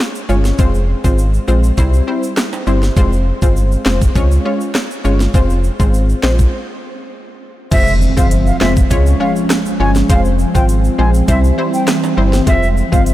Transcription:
0.00 cross-stick, snare
0.15 shaker
0.29 G1 G#3 C#4 F4 C#5, shaker
0.45 snare, shaker
0.59 F1 G#3 C4 F4 C5, kick, shaker
0.74 shaker
1.04 G#1 G#3 C4 F4 C5, kick, shaker
1.18 shaker
1.34 shaker
1.48 A#1 G#3 C4 F4 C5, shaker
1.64 shaker
1.77 C2 G3 C4 E4 C5, kick, shaker
1.93 shaker
2.07 G3 C4 E4 C5
2.23 shaker
2.37 cross-stick, snare, clap, shaker
2.53 high timbale, shaker
2.67 G1 G3 C4 E4 C5, shaker
2.83 snare, shaker
2.97 F1 G#3 C4 F4 C5, kick, shaker
3.12 shaker
3.42 G1 G#3 C4 F4 C5, kick, shaker
3.57 shaker
3.72 shaker
3.86 F1 G#3 C4 F4 C5, snare, clap, shaker
4.02 kick, shaker
4.15 C#2 G#3 C#4 F4 C#5, kick, shaker
4.31 shaker
4.45 G#3 C#4 F4 C#5
4.61 shaker
4.75 cross-stick, snare, clap, shaker
4.91 shaker
5.04 G1 G#3 C#4 F4 C#5, shaker
5.20 snare, shaker
5.34 F1 G#3 C4 F4 C5, kick, shaker
5.50 shaker
5.64 shaker
5.79 G#1 G#3 C4 F4 C5, kick, high timbale, shaker
5.94 shaker
6.09 shaker
6.23 A#1 G#3 C4 F4 C5, snare, clap, shaker
6.39 kick, shaker
7.71 F1 F3 G#3 C4 F4 C5 E5, kick, closed hi-hat, crash, impact, shaker
7.87 shaker
8.02 shaker
8.17 G1 G#3 C4 F4 C5 F5, kick, shaker
8.31 closed hi-hat, shaker
8.47 F5, shaker
8.61 F1 G#3 C4 F4 C5 E5, snare, clap
8.76 kick, shaker
8.90 C#2 F3 G#3 C#4 F4 C#5, kick, closed hi-hat, shaker
9.06 shaker
9.20 G#3 C#4 F4 C#5 F5
9.36 shaker
9.50 cross-stick, snare, clap, closed hi-hat, shaker
9.66 shaker
9.80 G1 G#3 C#4 F4 C#5 G#5
9.95 snare, shaker
10.09 F1 F3 G#3 C4 F4 C5 F5, kick, closed hi-hat, shaker
10.25 shaker
10.39 shaker
10.55 G#1 G#3 C4 F4 C5 G5, kick, shaker
10.69 closed hi-hat, shaker
10.84 shaker
10.98 A#1 G#3 C4 F4 C5 G#5
11.14 shaker
11.28 C2 E3 G3 C4 E4 C5 E5, kick, closed hi-hat, shaker
11.44 shaker
11.58 G3 C4 E4 C5
11.74 G5, shaker
11.88 cross-stick, snare, clap, closed hi-hat, shaker
12.04 high timbale, shaker
12.17 G1 G3 C4 E4 C5
12.33 snare, shaker
12.47 F1 F3 G#3 C4 F4 C5 E5, kick, closed hi-hat, shaker
12.63 shaker
12.77 shaker
12.92 G1 G#3 C4 F4 C5 F5, kick, shaker
13.06 closed hi-hat, shaker

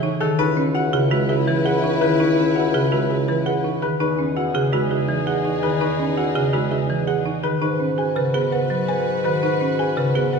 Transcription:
Already playing: A2 G#4 C#5
0.03 D#4
0.20 D#3 G#4 A4
0.39 C#2 D#4 E4 B4
0.57 C#4
0.75 F#4 F#5
0.93 C#3 G#4
1.11 G#3 F#4 B4
1.29 G#4 E5
1.47 E3 B4
1.65 G#4 F#5
1.84 D#4
2.01 D#3 G#4 B4
2.20 D#4 B4
2.38 C#4
2.55 F#4 F#5
2.74 C#3 G#4
2.91 G#3 F#4 B4
3.09 G#4 E5
3.28 E3 B4
3.46 G#4 F#5
3.64 D#4
3.82 D#3 G#4 B4
4.00 E2 D#4 G#4 B4
4.19 C#4
4.36 F#4 F#5
4.54 C#3 G#4
4.73 G#3 F#4 B4
4.91 G#4 E5
5.09 E3
5.27 G#4 F#5
5.45 D#4
5.63 D#3 G#4 B4
5.81 D#4 B4
5.99 C#4
6.17 F#4 F#5
6.35 C#3 G#4
6.53 G#3 F#4 B4
6.71 G#4 E5
6.90 E3
7.07 G#4 F#5
7.26 D#4
7.43 D#3 G#4 B4
7.62 G#2 D#4 F#4 B4
7.80 C#4
7.98 G#4 G#5
8.16 C#3 B4
8.34 B3 G#4 B4
8.52 B4 F#5
8.70 F#3
8.88 B4 G#5
9.24 D#3 B4
9.42 D#4 B4
9.61 C#4
9.79 G#4 G#5
9.97 C#3 B4
10.15 B3 G#4 B4
10.33 B4 F#5

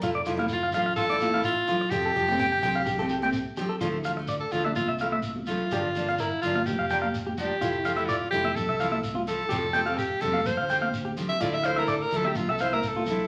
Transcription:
0.02 F1 A3 E4 F4, muted steel-string acoustic guitar stroke, shekere
0.15 D5
0.25 F1 F3 A3 E4 F4, low conga, shekere
0.37 A3 E4 F5, high conga
0.49 shekere
0.53 F4
0.63 F5
0.72 A1 F3 A3 E4 F4 F5, low conga, shekere
0.86 F5
0.96 F4 A4, shekere
1.10 A3 E4 D5
1.20 F4, high conga, shekere
1.33 A3 E4 F5, high conga
1.44 F4, shekere
1.67 F3 A3 E4 F4, low conga, shekere
1.81 muted clean electric guitar stroke
1.90 F1 F3 A3 C4 G4, shekere
2.06 A4
2.14 F1 F3 A3 C4 G4, low conga
2.28 A3 C4 G4 G5, high conga
2.39 G5, high conga, shekere
2.52 G5
2.62 C2 F3 A3 C4 G4 G5, low conga, shekere
2.76 F5
2.86 G4, low conga, shekere
2.99 A3 C4 G4 A4
3.09 G4, shekere
3.21 A3 C4 G4 G5, high conga
3.33 shekere
3.57 F3 A3 C4 G4, low conga, shekere
3.69 A4
3.81 D2 F3 A3 E4 F4, shekere
4.04 F3 F5, muted steel-string acoustic guitar stroke, shekere
4.17 A3, muted clean electric guitar stroke
4.28 D5, shekere
4.40 A4
4.51 D2 F3 A3 F4, shekere
4.55 E4
4.64 D4 E5, high conga
4.75 F4, high conga, low conga, shekere
4.88 C2 E5
4.99 F3 A3 E4 F5, shekere
5.12 E5, high conga
5.22 shekere
5.36 high conga
5.46 F3 A3 E4 F4, low conga, shekere
5.71 G1 F3 A#3 D4 G4, shekere
5.95 F3 A#3 D4, shekere
6.09 A#3 D4 F5
6.19 E4 A#4, shekere
6.41 G1 F3 A#3 D4 F4, low conga, shekere
6.55 F5, high conga
6.66 G4, high conga, low conga, shekere
6.79 F1 F5
6.90 F3 A#3 D4 G5, shekere
7.02 F5, high conga
7.14 shekere
7.26 G4, high conga
7.37 F3 A#3 D4 G4, low conga, shekere
7.61 F1 F3 A3 E4 F4, shekere
7.85 F3 A3 E4 F5, shekere
7.97 A3 E4 E5
8.06 F4 D5, shekere
8.30 F1 F3 A3 E4 G4, low conga, shekere
8.44 E5, high conga
8.55 A4, high conga, low conga, shekere
8.68 C2 E5
8.80 F3 A3 E4 F5, shekere
8.91 E5, high conga
9.04 shekere
9.15 F4, high conga
9.27 F3 A3 E4 A4, shekere
9.49 F1 F3 A3 C4 G4, muted steel-string acoustic guitar stroke, shekere
9.73 F3 A3 C4 G4 G5, high conga
9.86 A3 C4 G4 F5
9.97 G4, muted clean electric guitar stroke, shekere
10.21 F1 F3 A3 C4 G4 A4, low conga, shekere
10.33 F5, high conga
10.45 C5, high conga, low conga, shekere
10.57 D2 F5
10.69 F3 A3 C4 G4 G5, shekere
10.81 F5, high conga
10.93 shekere
11.05 G4, high conga
11.17 F3 A3 C4 G4, low conga, shekere
11.29 E5
11.41 D2 F3 A3 E4 F4 D5, shekere
11.54 E5
11.64 F3 A3 E4 C5 F5, shekere
11.76 A3 E4 A#4 E5
11.88 A4 D5, shekere
12.01 A#4
12.11 D2 F3 A3 E4, low conga, shekere
12.16 A4
12.24 G4 E5, high conga
12.35 F4, high conga, low conga, shekere
12.49 C2 A4 E5
12.59 A3 E4 C5 F5, shekere
12.72 A#4 E5, high conga
12.83 shekere
12.87 A4
12.96 F4, high conga
13.06 F3 A3 E4, low conga, shekere

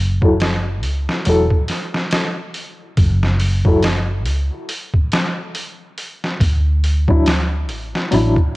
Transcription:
Already playing: F#1
0.22 F#3 E4 A4, kick
0.40 snare, open hi-hat
0.83 C#2, open hi-hat
1.09 snare
1.25 E1 F#3 E4 A4, open hi-hat
1.50 kick
1.68 snare, open hi-hat
1.94 snare
2.11 snare, open hi-hat
2.54 open hi-hat
2.97 F#1, kick, open hi-hat
3.23 snare
3.40 open hi-hat
3.65 F#3 E4 A4, kick
3.83 snare, open hi-hat
4.26 C#2, open hi-hat
4.69 open hi-hat
4.94 kick
5.12 snare, open hi-hat
5.55 open hi-hat
5.98 open hi-hat
6.24 snare
6.40 D2, kick, open hi-hat
6.84 open hi-hat
7.08 F#3 D4 E4, kick
7.26 snare, open hi-hat
7.69 A1, open hi-hat
7.95 snare
8.11 A1 F#3 D4 E4, open hi-hat
8.36 kick

